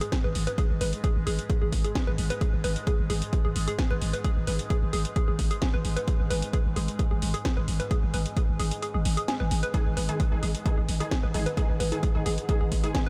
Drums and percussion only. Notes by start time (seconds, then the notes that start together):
0.01 closed hi-hat
0.12 kick, snare, closed hi-hat
0.35 open hi-hat
0.47 closed hi-hat
0.58 kick, closed hi-hat
0.81 open hi-hat
0.93 closed hi-hat
1.04 kick, closed hi-hat
1.27 open hi-hat
1.39 closed hi-hat
1.50 kick, closed hi-hat
1.72 kick, open hi-hat
1.84 closed hi-hat
1.95 kick, snare, closed hi-hat
2.18 open hi-hat
2.30 closed hi-hat
2.41 kick, closed hi-hat
2.64 open hi-hat
2.76 closed hi-hat
2.87 kick, closed hi-hat
3.10 open hi-hat
3.22 closed hi-hat
3.33 kick, closed hi-hat
3.56 open hi-hat
3.68 closed hi-hat
3.79 kick, snare, closed hi-hat
4.02 open hi-hat
4.13 closed hi-hat
4.24 kick, closed hi-hat
4.47 open hi-hat
4.59 closed hi-hat
4.70 kick, closed hi-hat
4.93 open hi-hat
5.05 closed hi-hat
5.16 kick, closed hi-hat
5.39 kick, open hi-hat
5.51 closed hi-hat
5.62 kick, snare, closed hi-hat
5.85 open hi-hat
5.97 closed hi-hat
6.08 kick, closed hi-hat
6.31 open hi-hat
6.42 closed hi-hat
6.53 kick, closed hi-hat
6.76 open hi-hat
6.88 closed hi-hat
6.99 kick, closed hi-hat
7.22 open hi-hat
7.34 closed hi-hat
7.45 kick, snare, closed hi-hat
7.68 open hi-hat
7.80 closed hi-hat
7.91 kick, closed hi-hat
8.14 open hi-hat
8.26 closed hi-hat
8.37 kick, closed hi-hat
8.60 open hi-hat
8.71 closed hi-hat
8.82 closed hi-hat
9.05 open hi-hat
9.17 closed hi-hat
9.28 snare, closed hi-hat
9.51 open hi-hat
9.63 closed hi-hat
9.74 kick, closed hi-hat
9.97 open hi-hat
10.09 closed hi-hat
10.20 kick, closed hi-hat
10.43 open hi-hat
10.55 closed hi-hat
10.66 kick, closed hi-hat
10.89 open hi-hat
11.00 closed hi-hat
11.11 kick, snare, closed hi-hat
11.34 open hi-hat
11.46 closed hi-hat
11.57 kick, closed hi-hat
11.80 open hi-hat
11.92 closed hi-hat
12.03 kick, closed hi-hat
12.26 open hi-hat
12.38 closed hi-hat
12.49 kick, closed hi-hat
12.72 kick, open hi-hat
12.84 closed hi-hat
12.95 kick, snare, closed hi-hat